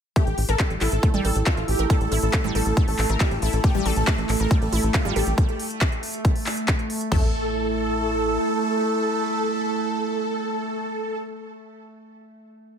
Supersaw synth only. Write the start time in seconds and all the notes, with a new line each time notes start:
0.16 G4
0.49 A4
0.81 A4
1.14 A4
1.46 F4
1.68 G4
1.90 A4
2.23 A4
2.55 A4
2.88 A4
3.20 G4
3.42 A4
3.64 G4
3.96 A4
4.29 A4
4.62 A4
4.94 F4
5.16 G4
7.12 A4